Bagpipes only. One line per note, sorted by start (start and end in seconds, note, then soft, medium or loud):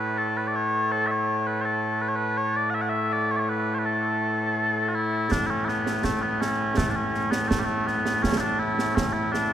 0.00 9.53 A2 medium
0.00 6.04 A3 medium
0.00 0.18 B4 medium
0.18 0.37 A4 medium
0.37 0.47 B4 medium
0.47 0.55 D5 medium
0.55 0.92 C#5 medium
0.92 1.07 A4 loud
1.07 1.11 E5 medium
1.11 1.47 C#5 medium
1.47 1.61 B4 medium
1.61 2.02 A4 medium
1.61 1.65 C#5 medium
2.02 2.09 B4 medium
2.09 2.16 C#5 medium
2.16 2.38 B4 medium
2.38 2.56 C#5 loud
2.56 2.70 D5 medium
2.70 2.75 F#5 medium
2.75 2.82 E5 medium
2.82 2.89 F#5 medium
2.89 3.12 E5 medium
3.12 3.31 D5 loud
3.31 3.36 C#5 medium
3.36 3.41 C#5 medium
3.36 3.39 D5 medium
3.41 3.49 C#5 medium
3.49 3.75 B4 medium
3.75 3.79 C#5 medium
3.79 3.85 B4 medium
3.85 4.88 A4 medium
4.88 4.95 F#4 medium
4.95 5.32 E4 loud
5.32 5.47 D4 loud
5.47 5.65 C#4 medium
5.47 5.50 E4 medium
5.65 6.04 B3 medium
5.65 5.69 E4 medium
6.04 6.22 A3 medium
6.22 6.41 B3 medium
6.41 6.77 C#4 loud
6.77 6.90 A3 medium
6.90 6.95 D4 medium
6.95 7.31 C#4 medium
7.31 7.48 B3 medium
7.48 7.59 A3 medium
7.59 7.65 G3 medium
7.65 7.87 A3 medium
7.87 8.23 B3 medium
8.23 8.38 C#4 medium
8.38 8.59 D4 medium
8.38 8.40 E4 medium
8.59 8.95 E4 medium
8.95 9.13 C#4 medium
9.13 9.32 E4 medium
9.32 9.53 D4 medium